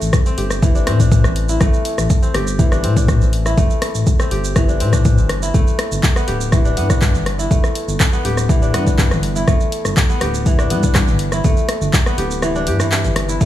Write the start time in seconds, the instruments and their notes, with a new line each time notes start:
Already playing: kora E3 A3 C4 D4 E4
0.01 analog synth bass A1, shaker
0.13 kick, cross-stick, shaker
0.26 kora C4, shaker
0.38 analog synth bass G1, kora G4, open hi-hat
0.50 cross-stick, shaker
0.62 kora E3, kick, shaker
0.75 kora D4, shaker
0.87 analog synth bass A2, kora C4, cross-stick, open hi-hat
1.00 kora D4, kick, shaker
1.12 kick, shaker
1.24 analog synth bass A1, cross-stick, shaker
1.36 open hi-hat
1.49 kora E4, shaker
1.61 analog synth bass A1, kora A3, kick, cross-stick, shaker
1.74 shaker
1.85 open hi-hat
1.98 analog synth bass A1, cross-stick, shaker
2.10 kick, shaker
2.23 kora C4, shaker
2.34 analog synth bass G1, kora G4, cross-stick, open hi-hat
2.47 shaker
2.59 kora E3, kick, shaker
2.72 kora D4, cross-stick, shaker
2.84 analog synth bass A2, kora C4, open hi-hat
2.96 kora D4, kick, shaker
3.08 kick, cross-stick, shaker
3.21 analog synth bass A1, shaker
3.33 open hi-hat
3.46 kora E4, cross-stick, shaker
3.57 analog synth bass A1, kora A3, kick, shaker
3.70 shaker
3.82 cross-stick, open hi-hat
3.95 analog synth bass A1, shaker
4.07 kick, shaker
4.20 kora C4, cross-stick, shaker
4.31 analog synth bass G1, kora G4, open hi-hat
4.44 shaker
4.56 kora E3, kick, cross-stick, shaker
4.69 kora D4, shaker
4.80 analog synth bass A2, kora C4, open hi-hat
4.93 kora D4, kick, cross-stick, shaker
5.05 kick, shaker
5.18 analog synth bass G1, shaker
5.29 cross-stick, open hi-hat
5.43 kora E4, shaker
5.54 analog synth bass G1, kora A3, kick, shaker
5.67 shaker
5.79 cross-stick, open hi-hat
5.92 analog synth bass G1, shaker
6.03 kick, clap, shaker
6.16 kora B3, cross-stick, shaker
6.28 analog synth bass D1, kora G4, open hi-hat
6.41 shaker
6.52 kora E3, kick, cross-stick, shaker
6.65 kora D4, shaker
6.77 analog synth bass G2, kora B3, open hi-hat
6.90 kora D4, kick, cross-stick, shaker
7.02 kick, clap, shaker
7.15 analog synth bass G1, shaker
7.26 cross-stick, open hi-hat
7.39 kora E4, shaker
7.51 analog synth bass G1, kora A3, kick, shaker
7.64 cross-stick, shaker
7.75 open hi-hat
7.88 analog synth bass G1, shaker
8.00 kick, cross-stick, clap, shaker
8.13 kora B3, shaker
8.25 analog synth bass D1, kora G4, open hi-hat
8.37 cross-stick, shaker
8.49 kora E3, kick, shaker
8.62 kora D4, shaker
8.73 analog synth bass G2, kora B3, cross-stick, open hi-hat
8.86 kora D4, kick, shaker
8.98 kick, clap, shaker
9.11 analog synth bass G1, cross-stick, shaker
9.23 open hi-hat
9.36 kora E4, shaker
9.48 analog synth bass G1, kora A3, kick, cross-stick, shaker
9.61 shaker
9.72 open hi-hat
9.85 analog synth bass G1, cross-stick, shaker
9.97 kick, clap, shaker
10.10 kora B3, shaker
10.21 analog synth bass D1, kora G4, cross-stick, open hi-hat
10.34 shaker
10.46 kora E3, kick, shaker
10.59 kora D4, cross-stick, shaker
10.70 analog synth bass G2, kora B3, open hi-hat
10.83 kora D4, kick, shaker
10.95 kick, cross-stick, clap, shaker
11.08 analog synth bass G1, shaker
11.19 open hi-hat
11.32 kora E4, cross-stick, shaker
11.44 analog synth bass G1, kora A3, kick, shaker
11.57 shaker
11.69 cross-stick, open hi-hat
11.81 analog synth bass G1, shaker
11.93 kick, clap, shaker
12.06 kora B3, cross-stick, shaker
12.18 analog synth bass D1, kora G4, open hi-hat
12.31 shaker
12.42 kora E3, cross-stick, shaker
12.55 kora D4, shaker
12.67 analog synth bass G2, kora G4, open hi-hat
12.80 kora E3, cross-stick, shaker
12.92 clap, shaker
13.04 analog synth bass G1, shaker
13.16 cross-stick, open hi-hat
13.29 kora E4, shaker
13.41 analog synth bass A1, kora A3, kick, shaker